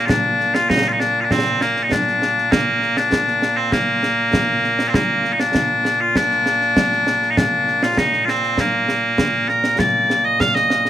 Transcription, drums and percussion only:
0.09 concert bass drum, snare
0.40 snare
0.55 snare
0.70 concert bass drum, snare
1.00 snare
1.31 concert bass drum, snare
1.46 snare
1.61 snare
1.76 snare
1.92 concert bass drum, snare
2.07 snare
2.22 snare
2.38 snare
2.52 concert bass drum, snare
2.82 snare
2.97 snare
3.12 concert bass drum, snare
3.27 snare
3.42 snare
3.72 concert bass drum, snare
4.03 snare
4.33 concert bass drum, snare
4.64 snare
4.79 snare
4.94 concert bass drum, snare
5.25 snare
5.40 snare
5.55 concert bass drum, snare
5.85 snare
6.16 concert bass drum, snare
6.31 snare
6.46 snare
6.61 snare
6.77 concert bass drum, snare
6.92 snare
7.07 snare
7.22 snare
7.37 concert bass drum, snare
7.67 snare
7.83 snare
7.97 concert bass drum, snare
8.13 snare
8.28 snare
8.43 snare
8.58 concert bass drum, snare
8.88 snare
9.18 concert bass drum, snare
9.49 snare
9.64 snare
9.79 concert bass drum, snare
10.10 snare
10.40 concert bass drum, snare
10.56 snare
10.70 snare
10.85 snare

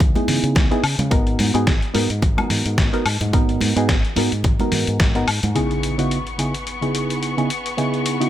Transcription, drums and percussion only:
0.00 kick, closed hi-hat, low conga
0.16 closed hi-hat, high conga
0.28 open hi-hat, low conga
0.44 closed hi-hat
0.55 kick, snare, closed hi-hat, high conga
0.71 closed hi-hat
0.84 open hi-hat, high woodblock
0.99 closed hi-hat, high conga
1.11 kick, closed hi-hat
1.27 closed hi-hat
1.39 open hi-hat, high conga
1.55 closed hi-hat
1.67 kick, snare, closed hi-hat
1.82 closed hi-hat
1.95 open hi-hat, high conga
2.10 closed hi-hat
2.22 kick, closed hi-hat, low conga
2.38 closed hi-hat, high conga, high woodblock
2.50 open hi-hat, low conga
2.66 closed hi-hat
2.78 kick, snare, closed hi-hat, high conga
2.94 closed hi-hat
3.06 open hi-hat, high woodblock
3.21 closed hi-hat, high conga
3.33 kick, closed hi-hat
3.49 closed hi-hat
3.61 open hi-hat, high conga
3.77 closed hi-hat
3.89 kick, snare, closed hi-hat
4.05 closed hi-hat
4.16 open hi-hat, high conga
4.32 closed hi-hat
4.44 kick, closed hi-hat, low conga
4.59 closed hi-hat, high conga
4.72 open hi-hat, low conga
4.87 closed hi-hat
4.99 kick, snare, closed hi-hat, high conga
5.15 closed hi-hat
5.28 open hi-hat, high woodblock
5.43 closed hi-hat, high conga
5.56 closed hi-hat
5.71 closed hi-hat
5.83 closed hi-hat
5.99 closed hi-hat
6.11 closed hi-hat
6.27 closed hi-hat
6.39 closed hi-hat
6.54 closed hi-hat
6.67 closed hi-hat
6.82 closed hi-hat
6.95 closed hi-hat
7.10 closed hi-hat
7.23 closed hi-hat
7.38 closed hi-hat
7.50 closed hi-hat
7.66 closed hi-hat
7.78 closed hi-hat
7.94 closed hi-hat
8.06 closed hi-hat
8.21 closed hi-hat

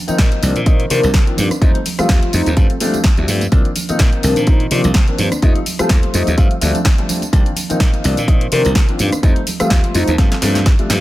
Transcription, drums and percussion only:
0.08 closed hi-hat, tambourine, maracas
0.18 kick, snare, closed hi-hat
0.32 closed hi-hat, high conga
0.43 open hi-hat, tambourine, maracas
0.56 closed hi-hat, tambourine, maracas
0.66 kick, closed hi-hat, tambourine
0.80 closed hi-hat
0.90 open hi-hat, tambourine, high conga, maracas
1.03 closed hi-hat, tambourine, low conga, maracas
1.14 kick, snare, closed hi-hat, tambourine
1.27 closed hi-hat
1.37 open hi-hat, tambourine, low conga, maracas
1.50 cross-stick, closed hi-hat, tambourine, high conga, maracas
1.62 kick, closed hi-hat, tambourine
1.75 closed hi-hat
1.85 open hi-hat, tambourine, low conga, maracas
1.99 cross-stick, closed hi-hat, tambourine, maracas
2.09 kick, snare, closed hi-hat, tambourine
2.23 closed hi-hat, high conga
2.33 open hi-hat, tambourine, maracas
2.46 closed hi-hat, tambourine, maracas
2.57 kick, closed hi-hat, tambourine
2.70 closed hi-hat
2.80 open hi-hat, tambourine, high conga, maracas
2.94 closed hi-hat, tambourine, low conga, maracas
3.04 kick, snare, closed hi-hat, tambourine, maracas
3.17 closed hi-hat
3.28 open hi-hat, tambourine, low conga, maracas
3.41 closed hi-hat, tambourine, high conga, maracas
3.52 kick, closed hi-hat, tambourine
3.65 closed hi-hat
3.75 open hi-hat, tambourine, low conga, maracas
3.89 closed hi-hat, tambourine, maracas
3.99 kick, snare, closed hi-hat, tambourine
4.13 closed hi-hat, high conga
4.23 open hi-hat, tambourine, maracas
4.36 closed hi-hat, tambourine, maracas
4.47 kick, closed hi-hat, tambourine
4.60 closed hi-hat
4.71 open hi-hat, tambourine, high conga, maracas
4.84 closed hi-hat, tambourine, low conga, maracas
4.94 kick, snare, closed hi-hat, tambourine
5.08 closed hi-hat
5.18 open hi-hat, tambourine, low conga, maracas
5.32 cross-stick, closed hi-hat, tambourine, high conga, maracas
5.42 kick, closed hi-hat, tambourine
5.56 closed hi-hat
5.66 open hi-hat, tambourine, low conga, maracas
5.79 cross-stick, closed hi-hat, tambourine, maracas
5.89 kick, snare, closed hi-hat, tambourine
6.03 closed hi-hat, high conga
6.14 open hi-hat, tambourine, maracas
6.27 closed hi-hat, tambourine, maracas
6.38 kick, closed hi-hat, tambourine, maracas
6.51 closed hi-hat
6.61 open hi-hat, tambourine, high conga, maracas
6.75 closed hi-hat, tambourine, low conga, maracas
6.85 kick, snare, closed hi-hat, tambourine
6.98 closed hi-hat
7.09 open hi-hat, tambourine, low conga, maracas
7.22 closed hi-hat, tambourine, high conga, maracas
7.33 kick, closed hi-hat, tambourine, maracas
7.46 closed hi-hat
7.56 open hi-hat, tambourine, low conga, maracas
7.70 closed hi-hat, tambourine, maracas
7.80 kick, snare, closed hi-hat, tambourine
7.93 closed hi-hat, high conga
8.04 open hi-hat, tambourine, maracas
8.17 closed hi-hat, tambourine, maracas
8.28 kick, closed hi-hat, tambourine, maracas
8.41 closed hi-hat
8.52 open hi-hat, tambourine, high conga, maracas
8.65 closed hi-hat, tambourine, low conga, maracas
8.75 kick, snare, closed hi-hat, tambourine, maracas
8.89 closed hi-hat
8.99 open hi-hat, tambourine, low conga, maracas
9.12 cross-stick, closed hi-hat, tambourine, high conga, maracas
9.23 kick, closed hi-hat, tambourine, maracas
9.36 closed hi-hat
9.47 open hi-hat, tambourine, low conga, maracas
9.60 cross-stick, closed hi-hat, tambourine, maracas
9.70 kick, snare, closed hi-hat, tambourine
9.84 closed hi-hat, high conga
9.94 open hi-hat, tambourine, maracas
10.08 closed hi-hat, tambourine, maracas
10.18 kick, snare, closed hi-hat, tambourine
10.32 snare, closed hi-hat
10.42 snare, open hi-hat, tambourine, high conga, maracas
10.55 snare, closed hi-hat, tambourine, low conga, maracas
10.66 kick, snare, closed hi-hat, tambourine
10.79 closed hi-hat
10.90 snare, open hi-hat, tambourine, low conga, maracas

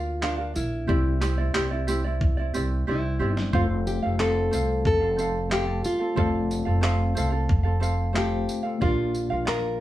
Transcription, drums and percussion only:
0.23 clap
0.56 tambourine
0.89 kick
1.22 clap, tambourine
1.55 clap
1.88 tambourine
2.21 kick
2.54 tambourine
3.37 snare
3.53 kick
3.87 tambourine
4.20 clap
4.53 tambourine
4.85 kick
5.19 tambourine
5.52 clap
5.84 tambourine
6.17 kick
6.51 tambourine
6.83 clap
7.17 tambourine
7.49 kick
7.83 tambourine
8.16 clap
8.49 tambourine
8.82 kick
9.14 tambourine
9.48 clap

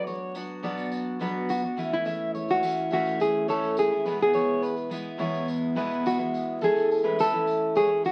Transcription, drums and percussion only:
0.07 tambourine
0.35 tambourine
0.63 tambourine
0.78 tambourine
0.92 tambourine
1.21 tambourine
1.49 tambourine
1.77 tambourine
2.05 tambourine
2.35 tambourine
2.48 tambourine
2.63 tambourine
2.91 tambourine
3.05 tambourine
3.20 tambourine
3.48 tambourine
3.62 tambourine
3.77 tambourine
4.06 tambourine
4.33 tambourine
4.63 tambourine
4.77 tambourine
4.91 tambourine
5.19 tambourine
5.34 tambourine
5.48 tambourine
5.77 tambourine
5.91 tambourine
6.06 tambourine
6.34 tambourine
6.61 tambourine
6.76 tambourine
6.91 tambourine
7.19 tambourine
7.47 tambourine
7.75 tambourine
8.04 tambourine

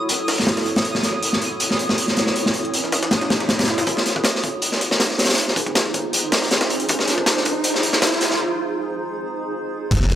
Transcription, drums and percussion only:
0.09 closed hi-hat
0.28 snare, closed hi-hat, open hi-hat
0.38 snare
0.47 snare, closed hi-hat, open hi-hat
0.57 snare, closed hi-hat
0.66 snare, closed hi-hat
0.76 snare, closed hi-hat, open hi-hat
0.84 closed hi-hat
0.95 snare
1.03 snare, closed hi-hat
1.23 closed hi-hat
1.33 snare
1.41 closed hi-hat
1.60 closed hi-hat
1.70 snare
1.79 closed hi-hat
1.89 snare
1.98 closed hi-hat
2.08 snare, closed hi-hat
2.16 snare, closed hi-hat
2.26 snare
2.36 closed hi-hat
2.46 snare
2.54 closed hi-hat, open hi-hat
2.65 closed hi-hat
2.74 closed hi-hat
2.84 snare
2.92 snare, closed hi-hat
3.03 snare, closed hi-hat
3.11 snare, closed hi-hat
3.21 snare, closed hi-hat
3.30 snare, closed hi-hat
3.40 snare, closed hi-hat
3.49 snare, closed hi-hat
3.59 snare, closed hi-hat
3.63 snare, closed hi-hat
3.68 snare, closed hi-hat
3.78 snare, closed hi-hat
3.87 kick, closed hi-hat
3.97 snare
4.06 snare, closed hi-hat
4.16 kick
4.24 snare, closed hi-hat
4.35 snare
4.43 kick, closed hi-hat
4.62 closed hi-hat
4.72 snare
4.81 closed hi-hat
4.91 snare
5.00 snare, closed hi-hat
5.10 snare, closed hi-hat
5.18 snare, closed hi-hat
5.25 snare, closed hi-hat
5.29 snare, closed hi-hat
5.33 snare, closed hi-hat
5.38 closed hi-hat
5.48 snare
5.56 kick, closed hi-hat, open hi-hat
5.66 kick, closed hi-hat
5.75 snare, closed hi-hat
5.86 snare
5.94 kick, closed hi-hat
6.13 closed hi-hat
6.32 snare, closed hi-hat, open hi-hat
6.42 snare
6.51 snare, closed hi-hat
6.61 snare, closed hi-hat
6.70 snare, closed hi-hat
6.80 closed hi-hat
6.89 kick, closed hi-hat
6.99 snare
7.08 snare, closed hi-hat
7.18 kick
7.26 snare, closed hi-hat
7.37 snare
7.45 kick, closed hi-hat
7.64 closed hi-hat
7.74 snare
7.83 closed hi-hat
7.93 snare
8.02 snare, closed hi-hat
8.12 snare, closed hi-hat
8.21 snare, closed hi-hat
8.31 snare
9.91 kick, closed hi-hat, crash
10.00 snare
10.09 snare, closed hi-hat

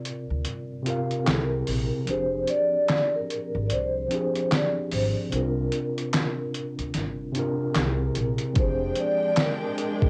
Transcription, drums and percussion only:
0.05 closed hi-hat
0.45 closed hi-hat
0.86 closed hi-hat
1.11 closed hi-hat
1.27 snare, clap, closed hi-hat
1.67 open hi-hat
2.07 closed hi-hat
2.48 closed hi-hat
2.88 snare, clap, closed hi-hat
3.30 closed hi-hat
3.70 closed hi-hat
4.11 closed hi-hat
4.35 closed hi-hat
4.52 snare, clap, closed hi-hat
4.92 open hi-hat
5.32 closed hi-hat
5.72 closed hi-hat
5.98 closed hi-hat
6.13 snare, clap, closed hi-hat
6.54 closed hi-hat
6.79 closed hi-hat
6.94 snare, closed hi-hat
7.35 closed hi-hat
7.75 snare, clap, closed hi-hat
8.15 closed hi-hat
8.38 closed hi-hat
8.55 kick, closed hi-hat
8.95 closed hi-hat
9.36 snare, clap, closed hi-hat
9.78 closed hi-hat
10.02 kick

